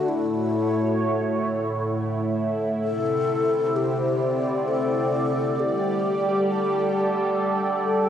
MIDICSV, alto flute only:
0, 0, Header, 1, 2, 480
1, 0, Start_track
1, 0, Tempo, 909091
1, 59, Time_signature, 3, 2, 24, 8
1, 4272, End_track
2, 0, Start_track
2, 0, Title_t, "Alto flute"
2, 0, Program_c, 0, 73
2, 0, Note_on_c, 0, 66, 97
2, 47, Note_on_c, 0, 64, 93
2, 54, Note_off_c, 0, 66, 0
2, 773, Note_off_c, 0, 64, 0
2, 1499, Note_on_c, 0, 69, 106
2, 1986, Note_on_c, 0, 67, 90
2, 1994, Note_off_c, 0, 69, 0
2, 2469, Note_on_c, 0, 69, 88
2, 2477, Note_off_c, 0, 67, 0
2, 2954, Note_on_c, 0, 67, 94
2, 2962, Note_off_c, 0, 69, 0
2, 3422, Note_off_c, 0, 67, 0
2, 3425, Note_on_c, 0, 67, 73
2, 3881, Note_off_c, 0, 67, 0
2, 4142, Note_on_c, 0, 69, 73
2, 4272, Note_off_c, 0, 69, 0
2, 4272, End_track
0, 0, End_of_file